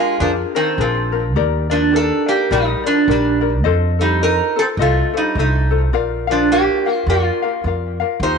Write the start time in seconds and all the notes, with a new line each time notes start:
Already playing: F4 A#4
0.00 G#3 D4 F4
0.20 F2 F3 D4 F4 G#4 A#4
0.55 D#3 C4 D4 F4 A#4
0.78 A#1 F3 C4 D4 F4 G#4 A#4
1.12 D4 F4 A#4
1.35 D#2 D#4 G4 A#4 D5
1.70 F3 D4 D#4 A#4 D5
1.92 D#4 G4 A#4 D5
1.96 D4 A4
2.26 A#3 D#4 G4 A#4 D5
2.51 A#1 G3 D#4 G4 A#4 D5
2.84 F3 D4 D#4 A#4 D5
3.08 A#1 G3 D4 D#4 G4 A#4 D5
3.41 D#4 A#4 D5
3.64 F2 F4 A4 C5 D#5
3.99 G3 D#4 F4 A4 C5
4.21 D#4 F4 A4 A#4 C5 D#5
4.56 C4 F4 A4 C5
4.77 C2 F4 A4 C5 D#5
4.82 A3 F4
5.14 G3 D#4 F4 A4 C5
5.35 C2 F4 A4 C5 D#5
5.39 A3 D#4
5.71 F4 A4 C5
5.92 A#1 F4 A#4 D5 F5
6.27 F3 F4 A#4 F5
6.32 D4
6.52 A#3 F4 G4 A#4 D5 F5
6.86 F4 A#4 F5
6.93 F4
7.06 F2 A#3 F4 A#4 D5 F5
7.42 F4 A#4 F5
7.64 F2 F4 A#4 D5 F5
8.00 F4 A#4 F5
8.20 D#2 D#4 F4 G4 C5